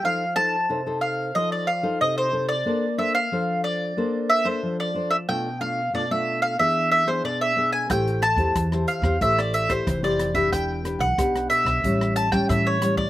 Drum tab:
HH |----------------|----------------|----------------|xxxxx-x-x-xxxxxx|
SD |----------------|----------------|----------------|r-r-rr-r-r-rr-r-|
BD |----------------|----------------|----------------|o--oo--oo--oo--o|

HH |x-xxxxx-x-x-x-x-|
SD |r-r-rr-r-r-rr-r-|
BD |o--oo--oo--oo--o|